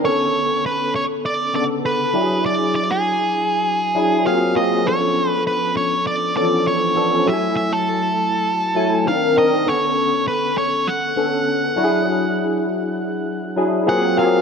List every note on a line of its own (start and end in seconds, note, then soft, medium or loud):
0.03 0.98 D3 medium
0.03 0.98 B3 medium
0.03 0.98 C#4 medium
0.03 0.98 A4 medium
0.03 0.66 C#5 medium
0.66 0.95 B4 medium
0.96 1.03 C#5 medium
1.26 1.54 D5 medium
1.53 2.01 C#3 medium
1.53 2.01 D3 medium
1.53 2.01 B3 medium
1.53 2.01 A4 medium
1.53 1.63 D5 medium
1.86 2.45 B4 medium
2.13 3.10 F#3 medium
2.13 3.10 D4 medium
2.13 3.10 E4 medium
2.13 2.21 G4 medium
2.21 3.14 G#4 medium
2.46 2.74 D5 medium
2.75 2.90 D5 medium
2.91 4.30 G#4 medium
3.94 4.23 F#3 medium
3.94 4.25 D4 medium
3.94 4.25 E4 medium
3.94 4.24 G#4 medium
4.24 4.49 F#3 medium
4.24 4.49 A#3 medium
4.24 4.49 C4 medium
4.24 4.49 F4 medium
4.24 4.49 G#4 medium
4.24 4.56 F5 loud
4.55 4.79 F#3 medium
4.55 4.79 A#3 medium
4.55 4.79 C4 medium
4.55 4.79 F4 medium
4.55 4.79 G#4 medium
4.55 4.87 D#5 medium
4.85 5.79 F3 medium
4.85 5.80 B3 medium
4.85 5.80 C#4 medium
4.85 5.80 D4 medium
4.85 5.80 A4 medium
4.85 5.30 C#5 medium
5.30 5.42 B4 medium
5.47 5.77 B4 medium
5.77 6.07 C#5 medium
6.07 6.34 D5 loud
6.35 6.42 E3 medium
6.35 6.83 B3 medium
6.35 6.83 C#4 medium
6.35 6.83 D4 medium
6.35 6.83 A4 medium
6.35 6.67 D5 medium
6.42 6.86 F3 medium
6.67 7.29 C#5 loud
6.95 7.19 F3 medium
6.95 7.19 B3 medium
6.95 7.19 C#4 medium
6.95 7.20 D4 medium
6.95 7.20 A4 medium
7.25 8.20 F#3 medium
7.25 8.20 A3 medium
7.25 8.20 E4 medium
7.25 7.33 G4 medium
7.25 7.56 E5 medium
7.33 8.24 G#5 medium
7.57 7.72 E5 medium
7.73 9.11 A4 medium
8.75 9.06 F#3 medium
8.75 9.06 A3 medium
8.75 9.06 E4 medium
8.75 9.06 G#5 medium
9.05 9.30 D#3 medium
9.05 9.30 C4 medium
9.05 9.30 D4 medium
9.05 9.31 A#4 medium
9.05 9.35 F5 loud
9.36 9.60 D#3 medium
9.36 9.60 C4 medium
9.36 9.60 D4 medium
9.36 9.60 A#4 medium
9.36 9.68 D#5 medium
9.66 10.61 D3 medium
9.66 10.61 B3 medium
9.66 10.61 C#4 medium
9.66 10.61 A4 medium
9.66 10.27 C#5 loud
10.28 10.57 B4 medium
10.58 10.88 C#5 medium
10.88 13.83 F#5 medium
11.16 11.64 D3 medium
11.16 11.64 B3 medium
11.16 11.64 C#4 medium
11.16 11.64 A4 medium
11.76 12.73 F#3 medium
11.76 12.73 D4 medium
11.76 12.73 E4 medium
11.76 11.83 F#4 medium
11.84 12.76 G#4 loud
13.56 13.85 F#3 medium
13.56 13.87 D4 medium
13.56 13.87 E4 medium
13.56 13.86 G#4 medium
13.86 14.11 F#3 medium
13.86 14.11 A#3 medium
13.86 14.11 C4 medium
13.86 14.11 F4 medium
13.86 14.11 G#4 loud
13.86 14.16 F#5 loud
14.16 14.40 F#3 medium
14.16 14.40 A#3 medium
14.16 14.40 C4 medium
14.16 14.41 F4 medium
14.16 14.41 G#4 medium
14.16 14.42 F5 loud